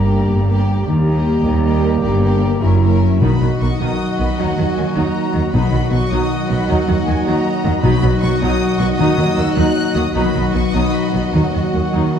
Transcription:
Already playing: G1 G2 D3 G3 A#3 G4 A#4 D5 A#5
0.11 D4
0.29 G1 G2 G4
0.48 A#3 G4 A#4 D5
0.68 G4
0.86 D#2 D#3 G3 A#3 G4 A#5
1.05 A#3 D#4 G4 D#5
1.27 G4
1.44 D#2 A#4
1.63 A#3 G4 D#5
1.85 A#4
2.02 G1 G2 D3 A#3 G4 D5
2.22 A#3 G4 D5
2.43 D4 G4
2.61 F#1 F#2 C#3 F#3 C#4 E4 A#4 E5
2.82 C#4 A#4 E5
3.02 E4 A#4
3.21 B1 B2 D#3 F#3 D#4 F#4 D#5 B5
3.32 F#3
3.41 B1 B2 D#3 F#3 D#4
3.61 B1 B2 D#3 B3 D#5 C#6
3.72 F#4
3.80 B1 B2 D#3 D#4 F#5 D#6
3.91 D#6
4.01 F#5
4.10 D#5
4.19 B1 B2 D#3 B3 B5
4.29 D#4
4.38 D#2 D#3 F#3 D#4 F#5
4.48 A#3
4.57 D#2 D#3 F#3 D#4
4.67 F#4
4.77 D#2 D#3 F#3 A#3 D#5 G#5
4.95 D#2 D#3 F#3 D#4 F#5 A#5
5.06 D#6
5.16 F#5
5.25 D#5
5.34 D#2 D#3 F#3 A#3 F#4
5.44 D#4
5.53 B1 B2 D#3 F#3 D#4 F#4 D#5 B5
5.63 F#3
5.72 B1 B2 F#3 D#4
5.83 F#4
5.92 B1 B2 F#3 B3 D#5 C#6
6.02 F#4
6.11 B1 B2 F#3 D#4 F#5 D#6
6.30 F#5
6.40 D#5
6.49 B1 B2 F#3 B3 F#4 B5
6.59 D#4
6.68 D#2 D#3 F#3 D#4 F#5
6.79 A#3
6.88 D#2 D#3 F#3 D#4
6.98 F#4
7.07 D#2 D#3 F#3 A#3 D#5 G#5
7.17 F#4
7.26 D#2 D#3 F#3 D#4 F#5 A#5
7.36 D#6
7.45 F#5
7.54 D#5
7.63 D#2 D#3 F#3 A#3 F#4
7.73 D#4
7.82 B1 B2 D#3 F#3 D#4 F#4 D#5 B5
7.92 F#3
8.02 B1 B2 F#3 D#4
8.11 F#4
8.21 B1 B2 F#3 B3 D#5 C#6
8.31 F#4
8.40 B1 B2 F#3 D#4 F#5 D#6
8.60 F#5
8.70 D#5
8.78 B1 B2 F#3 B3 C#6
8.90 D#4
8.97 D#2 D#3 F#3 D#4 D#6
9.09 A#3
9.17 D#2 D#3 F#3
9.28 F#4
9.36 D#2 D#3 F#3 A#3 A#4 E6
9.47 D#5
9.56 D#2 D#3 F#3 D#4 F#5 F#6
9.66 A#5
9.75 F#5
9.86 D#5
9.95 D#2 D#3 F#3 A#3 A#4 D#6
10.05 F#4
10.14 B1 B2 D#3 F#3 D#4 F#4 D#5 B5
10.25 F#3
10.34 B1 B2 F#3 D#4
10.53 B1 B2 F#3 B3 B4 C#6
10.64 D#5
10.72 B1 B2 D#3 F#3 D#4 F#4 F#5 D#6
10.84 B5
10.93 F#5 B5
11.04 D#5
11.13 B1 B2 F#3 B3 B4
11.33 D#2 D#3 F#3 D#4 F#4 F#5
11.44 A#3
11.53 D#2 D#3 F#3 D#4
11.64 F#4
11.73 D#2 D#3 F#3 A#3 A#4
11.84 D#5
11.93 D#2 D#3 F#3 D#4 F#5
12.04 A#5
12.13 E3 F#5

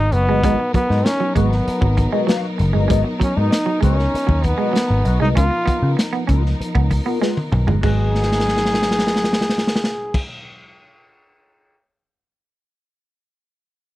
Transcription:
Already playing: F#3 B3 D#4 A#4
0.12 F#1 B3 F#4 B4 D#5, muted clean electric guitar stroke, closed hi-hat
0.28 G1 G#3 F#4 B4 D#5
0.43 G#1 G#3 F#4 B4 D#5, kick, closed hi-hat
0.60 muted clean electric guitar stroke
0.74 F#3 B3, muted picked electric bass stroke, muted clean electric guitar stroke, kick, closed hi-hat
0.90 G#2 F#4 B4 D#5, snare
1.05 C#4, muted clean electric guitar stroke, snare, closed hi-hat
1.20 F#3, muted clean electric guitar stroke
1.35 G#1 G#3 B3 F#4 B4 D#5, kick, closed hi-hat
1.52 muted clean electric guitar stroke, snare
1.67 muted clean electric guitar stroke, muted picked electric bass stroke, closed hi-hat
1.81 G#1 F#3, muted clean electric guitar stroke, kick
1.97 muted clean electric guitar stroke, kick, closed hi-hat
2.12 G#3 F#4 B4 D#5
2.27 F#3 F#4 B4 F5, snare, closed hi-hat
2.59 F#1, muted clean electric guitar stroke, closed hi-hat
2.73 G1 G#3 F#4 B4 D#5
2.88 G#1 G#3 F#4 B4 D#5, kick, closed hi-hat
3.06 muted clean electric guitar stroke
3.20 F#3 C#4, muted clean electric guitar stroke, muted picked electric bass stroke, kick, closed hi-hat
3.37 G#2 D#4 F#4 B4 D#5
3.52 muted clean electric guitar stroke, snare, closed hi-hat
3.66 F#3, muted clean electric guitar stroke
3.81 C#2 G#3 C#4 F#4 B4, kick, closed hi-hat
3.85 D#5
3.99 muted clean electric guitar stroke, snare
4.14 muted picked electric bass stroke, muted clean electric guitar stroke, closed hi-hat
4.27 D#2 F#3, muted clean electric guitar stroke, kick
4.43 B3, muted clean electric guitar stroke, kick, closed hi-hat
4.58 G#3 F#4 B4 D#5
4.73 F#3, snare, closed hi-hat
4.90 G#1, muted clean electric guitar stroke
5.05 B1 F#4 B4 D#5, muted clean electric guitar stroke, closed hi-hat
5.20 C2 G#3 D#4 F#4 B4 D#5
5.35 C#2 F3 B3 C#4 F4 A#4, kick, closed hi-hat
5.50 muted clean electric guitar stroke
5.66 B3, muted picked electric bass stroke, kick, closed hi-hat
5.83 C#3 B3 F4 A#4
5.99 muted clean electric guitar stroke, snare, closed hi-hat
6.13 B3, muted clean electric guitar stroke
6.27 C#2 B3 C#4 F4 A#4, kick, closed hi-hat
6.45 muted clean electric guitar stroke, snare
6.60 muted clean electric guitar stroke, muted picked electric bass stroke, closed hi-hat
6.75 C#2 B3, muted clean electric guitar stroke, kick
6.91 muted clean electric guitar stroke, kick, open hi-hat
7.05 B3 F4 A#4
7.21 G#3 B3 F4 B4, snare
7.37 high tom
7.52 B1, muted clean electric guitar stroke, mid tom
7.67 G1 G#3 B3 F4 A#4, floor tom
7.81 G#1 F#3 G#3 B3 D#4 F#4 G#4 B4, kick, crash
7.86 D#5
8.15 snare
8.23 snare
8.32 snare
8.40 snare
8.48 snare
8.57 snare
8.65 snare
8.74 snare
8.82 snare
8.91 snare
8.99 snare
9.07 snare
9.16 snare
9.24 snare
9.33 snare
9.41 snare
9.49 snare
9.58 snare
9.67 snare
9.76 snare
9.84 snare
10.14 kick, crash

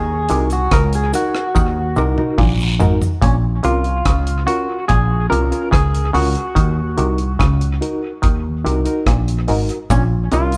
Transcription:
Already playing: D#2 D#3 G#4
0.29 C2 C3 D#4 F#4 A#4, closed hi-hat, cabasa
0.50 F#4, closed hi-hat, cabasa
0.71 C#2 C#3 A#4, kick, cross-stick, closed hi-hat
0.93 G#4, closed hi-hat, cabasa
1.13 D#4 F#4 A#4, closed hi-hat, cabasa
1.35 F#4 A#4, cross-stick
1.55 D#2 D#3, kick, high tom, cabasa
1.96 C2 C3 D#4 F#4 A#4, mid tom, cabasa
2.18 D#4 F#4 A#4, mid tom
2.38 A#1 A#2, kick, mid tom, long guiro
2.60 cabasa
2.80 G#1 G#2 D#4 F#4 A#4, floor tom, cabasa
3.02 floor tom, cabasa
3.22 A#1 A#2 C#4, kick, closed hi-hat
3.63 C2 C3 C#4 F4 A#4, closed hi-hat
3.84 closed hi-hat
4.05 C#2 C#3, kick, cross-stick, closed hi-hat
4.27 closed hi-hat
4.46 C#4 F4 F#4 A#4, closed hi-hat
4.69 F4 A#4
4.88 A#1 A#2 G#4, kick, closed hi-hat
5.29 C2 C3 C#4 F4 A#4, closed hi-hat
5.51 C#4 F4 A#4, closed hi-hat
5.71 C#2 C#3 G#4, kick, cross-stick, closed hi-hat
5.95 closed hi-hat
6.13 C#2 C#3 C#4 F4 F#4 A#4, open hi-hat
6.35 closed hi-hat
6.55 D#2 D#3, kick, closed hi-hat
6.97 C2 C3 D#4 F#4 A#4, closed hi-hat
7.18 closed hi-hat
7.39 C#2 C#3, kick, cross-stick, closed hi-hat
7.61 closed hi-hat
7.81 D#4 F#4 A#4, closed hi-hat
8.03 F#4 A#4
8.22 D#2 D#3, kick, closed hi-hat
8.64 C2 C3 D#4 F#4 A#4, closed hi-hat
8.85 D#4 F#4 A#4, closed hi-hat
9.06 A#1 A#2, kick, cross-stick, closed hi-hat
9.28 closed hi-hat
9.47 G#1 G#2 D#4 F#4 A#4, open hi-hat
9.69 F#4 A#4, closed hi-hat
9.90 A#1 A#2 C#4, kick, closed hi-hat, cabasa
10.32 C2 C3 C#4 F4 A#4, closed hi-hat, cabasa
10.52 closed hi-hat, cabasa

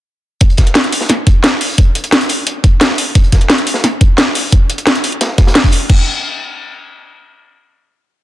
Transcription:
0.41 kick, closed hi-hat
0.50 closed hi-hat
0.57 kick, snare, closed hi-hat
0.67 closed hi-hat
0.75 snare, closed hi-hat
0.84 closed hi-hat
0.92 closed hi-hat, open hi-hat
1.01 snare
1.09 snare, closed hi-hat
1.27 kick, closed hi-hat
1.44 snare, closed hi-hat
1.61 open hi-hat
1.78 kick, closed hi-hat
1.95 closed hi-hat
2.04 closed hi-hat
2.12 snare, closed hi-hat
2.21 closed hi-hat
2.29 closed hi-hat, open hi-hat
2.47 closed hi-hat
2.64 kick, closed hi-hat
2.81 snare, closed hi-hat
2.89 snare
2.98 closed hi-hat, open hi-hat
3.15 kick, closed hi-hat
3.24 closed hi-hat
3.32 kick, snare, closed hi-hat
3.41 closed hi-hat
3.50 snare, closed hi-hat
3.58 closed hi-hat
3.67 closed hi-hat, open hi-hat
3.74 snare
3.84 snare, closed hi-hat
4.01 kick, closed hi-hat
4.18 snare, closed hi-hat
4.35 open hi-hat
4.52 kick, closed hi-hat
4.70 closed hi-hat
4.78 closed hi-hat
4.87 snare, closed hi-hat
4.95 closed hi-hat
5.04 closed hi-hat, open hi-hat
5.12 closed hi-hat
5.21 snare, closed hi-hat
5.38 kick, snare, closed hi-hat
5.47 snare, closed hi-hat
5.55 snare, closed hi-hat
5.64 kick, open hi-hat
5.71 closed hi-hat, open hi-hat
5.90 kick, crash

